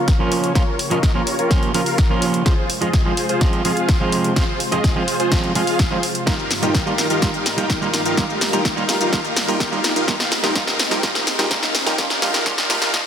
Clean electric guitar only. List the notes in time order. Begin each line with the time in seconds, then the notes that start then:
0.19 F3 A#3 C#4 F4
0.55 F3 A#3 C#4 F4
0.90 F3 A#3 C#4 F4
1.14 F3 A#3 C#4 F4
1.50 F3 A#3 C#4 F4
1.74 F3 A#3 C#4 F4
2.09 F3 A#3 C#4 F4
2.45 F3 G#3 C4 F4
2.81 F3 G#3 C4 F4
3.05 F3 G#3 C4 F4
3.41 F3 G#3 C4 F4
3.65 F3 G#3 C4 F4
4.00 F3 G#3 C4 F4
4.36 F3 G#3 C4 F4
4.72 F3 G#3 C4 F4
4.95 F3 G#3 C4 F4
5.31 F3 G#3 C4 F4
5.55 F3 G#3 C4 F4
5.91 F3 G#3 C4 F4
6.26 G3 A#3 D#4 F4
6.62 G3 A#3 D#4 F4
6.86 G3 A#3 D#4 F4
7.21 G3 A#3 D#4 F4
7.57 G3 A#3 D#4 F4
7.81 G3 A#3 D#4 F4
8.17 G3 A#3 D#4 F4
8.52 G3 A#3 D#4 F4
8.76 G3 A#3 D#4 F4
9.12 G3 A#3 D#4 F4
9.48 G3 A#3 D#4 F4
9.72 G3 A#3 D#4 F4
10.07 G3 A#3 D#4 F4
10.43 G3 A#3 D#4 F4
10.55 G3 A#3 D#4 F4
10.91 G3 A#3 D#4 F4
11.02 G3 A#3 D#4 F4
11.38 G3 A#3 D#4 F4
11.50 G3 A#3 D#4 F4
11.86 G3 A#3 D#4 F4
11.98 G3 A#3 D#4 F4
12.22 G3 A#3 D#4 F4
12.45 G3 A#3 D#4 F4
12.69 G3 A#3 D#4 F4
12.93 G3 A#3 D#4 F4